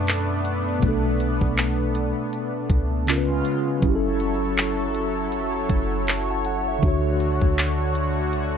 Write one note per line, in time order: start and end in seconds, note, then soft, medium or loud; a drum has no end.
0.00 0.79 F#2 loud
0.00 0.77 B2 medium
0.00 0.78 A3 medium
0.00 3.04 A3 medium
0.00 3.79 B3 medium
0.00 0.80 D4 medium
0.00 3.03 D4 medium
0.00 0.81 B4 medium
0.07 clap loud
0.07 closed hi-hat medium
0.45 closed hi-hat medium
0.79 1.40 B1 loud
0.79 3.02 B2 medium
0.79 3.03 A3 medium
0.79 kick loud
0.79 closed hi-hat medium
0.86 3.05 D4 medium
0.86 3.07 A4 medium
1.20 closed hi-hat medium
1.41 2.14 B1 medium
1.41 kick medium
1.57 clap loud
1.57 closed hi-hat medium
1.95 closed hi-hat medium
2.33 closed hi-hat medium
2.70 3.42 C#2 medium
2.70 kick loud
2.70 closed hi-hat medium
3.07 3.82 C#3 medium
3.07 3.82 G#3 medium
3.07 3.81 C#4 medium
3.07 3.82 F4 medium
3.07 3.84 F4 medium
3.07 clap loud
3.07 closed hi-hat medium
3.11 3.17 A#4 medium
3.18 3.88 B4 medium
3.45 closed hi-hat medium
3.79 5.66 F#1 loud
3.79 6.77 F#3 medium
3.79 6.80 F#3 medium
3.79 6.79 C#4 medium
3.79 6.80 E4 medium
3.79 6.80 A4 medium
3.79 8.57 C#5 medium
3.79 kick loud
3.79 closed hi-hat medium
3.85 6.80 E4 medium
3.85 3.93 G4 medium
3.95 6.85 A4 medium
4.20 closed hi-hat medium
4.57 clap loud
4.57 closed hi-hat medium
4.95 closed hi-hat medium
5.32 closed hi-hat medium
5.70 6.78 F#1 medium
5.70 kick medium
5.70 closed hi-hat medium
6.07 clap loud
6.07 closed hi-hat medium
6.30 6.45 F#5 medium
6.30 6.45 A5 medium
6.45 6.66 F#5 medium
6.45 closed hi-hat medium
6.68 6.87 C#5 medium
6.68 7.03 E5 medium
6.79 8.57 D3 medium
6.79 8.57 D4 medium
6.83 7.40 D2 loud
6.83 8.57 D3 medium
6.83 8.57 A3 medium
6.83 8.57 F#4 medium
6.83 kick loud
6.83 closed hi-hat medium
6.88 8.57 C#5 medium
7.20 closed hi-hat medium
7.42 8.57 D2 medium
7.42 kick medium
7.58 clap loud
7.58 closed hi-hat medium
7.95 closed hi-hat medium
8.33 closed hi-hat medium